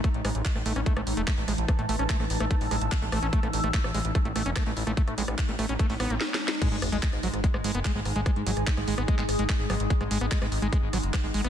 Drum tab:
CC |------------------------------------------------|------------------------------------------------|------------------------------------------------|------------------------------------------------|
HH |x--x--o--x--x-----o--x--x--x--o--x--x--x--o--x--|x--x--o--x--x-----o--x--x--o--o--x--x--x--o--x--|x--x--o--x--x-----o--x--x--x--o--x--x--x--o--x--|x--x--o--x--x--x--o--x--x--o--o--x--------------|
CP |------------x-----------------------x-----------|------------x-----------------------x-----------|------------x-----------------------x-----------|------------x-----------------------------------|
SD |r-----r--------r-----r-----r--------r-----r-----|r--------r-----r-----r--------r-----r-----r-----|---r-----r-----r--------r-----r-----r--------r--|---r-----r--------r-----r-----r-----o---o---o---|
BD |o-----------o-----------o-----------o-----------|o-----------o-----------o-----------o-----------|o-----------o-----------o-----------o-----------|o-----------o-----------o-----------------------|

CC |x-----------------------------------------------|------------------------------------------------|------------------------------------------------|
HH |x--x--o--x--x--x--o--x--x-----o--x--x-----o--x--|x--x--o--x--x--x--o--x--x-----o--x--x-----o--x--|x--x--o--x--x--x--o--x--x-----o--x--x-----o--x--|
CP |------------x-----------------------x-----------|------------x--------------x--------x-----------|------------x-----------------------x-----------|
SD |r-----r--------r-----r-----r--------r-----r-----|r--------r-----r-----r--------r-----r-----r-----|---r-----r-----r--------r-----r-----r--------r--|
BD |o-----------o-----------o-----------o-----------|o-----------o-----------o-----------o-----------|o-----------o-----------o-----------o-----------|